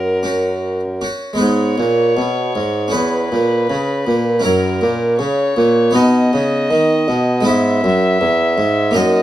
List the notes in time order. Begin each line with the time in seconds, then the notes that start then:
Already playing: F#2 A#4
0.23 C#4 F#4
1.01 C#4 F#4
1.33 G#3 B3 G#4
1.38 G#2 B4 C#5
1.78 A#2
2.16 B2
2.55 G#2
2.88 C#4 G#4 B4
2.93 E2
3.32 A#2
3.69 C#3
4.07 A#2
4.40 C#4 E4 A#4
4.44 F#2 A#4
4.81 A#2
5.19 C#3 C#5
5.57 A#2
5.91 B2 B3 D#4 B4
5.96 D#5
6.33 C#3
6.71 D#3
7.08 B2
7.41 G#3 B3 E4
7.45 G#2 B4 E5
7.83 F#2
8.20 E2
8.57 G#2
8.91 F#2 A#3 D#4 D#5
8.95 F#2 D#5